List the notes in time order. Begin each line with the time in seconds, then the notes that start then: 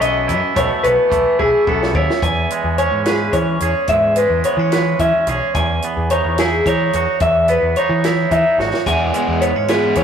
Already playing: E3 A3 E4
0.01 B1 F#2 B3 D#5, closed hi-hat
0.28 F#2 E4, closed hi-hat
0.55 B1 B2 A3 C#5, kick, closed hi-hat
0.83 B1 B3 B4, closed hi-hat
1.09 B1 E3 A3, kick, closed hi-hat
1.39 B1 E4 G#4, kick
1.67 B1 F#2 B3 A4, kick
1.83 snare
1.95 D#2 E4 C#5, kick
2.10 snare
2.22 E2 G#5, kick, closed hi-hat
2.50 G#3, closed hi-hat
2.64 E2
2.78 C#4 C#5, closed hi-hat
2.91 G#2
3.05 G#4 B4, snare, closed hi-hat
3.33 E3 C#4 C#5, kick, closed hi-hat
3.60 E2 G#4, closed hi-hat
3.87 E2 G#2 E5, kick, closed hi-hat
4.16 G#3 B4, closed hi-hat
4.29 E2
4.44 B3 C#5, closed hi-hat
4.57 E3 C#4
4.72 B4, snare, closed hi-hat
4.99 E3 C#4 E5, kick, closed hi-hat
5.27 B1 G#4 C#5, closed hi-hat
5.55 E2 G#5, kick, closed hi-hat
5.82 B3, closed hi-hat
5.97 E2
6.10 D#4 C#5, closed hi-hat
6.24 E2
6.38 E4 G#4, snare, closed hi-hat
6.66 E3 D#4 C#5, kick, closed hi-hat
6.93 E2 F#4, closed hi-hat
7.20 E2 E5, kick, closed hi-hat
7.48 B3 B4, closed hi-hat
7.62 E2
7.76 D#4 C#5, closed hi-hat
7.89 E3
8.04 E4, snare, closed hi-hat
8.31 E3 D#4 E5, kick, closed hi-hat
8.58 G#1 F#4 C#5, snare
8.74 snare
8.86 E2 E3 G#3 B3 E4 G#5, kick, closed hi-hat
9.13 E3 G#3 B3 E4, closed hi-hat
9.28 E2
9.42 B3 C#5, closed hi-hat
9.56 G#2 C#4
9.68 E3 G#3 B3 E4 G#4 B4, snare, closed hi-hat
9.95 E3 G#3 B3 C#4 E4 C#5, kick, closed hi-hat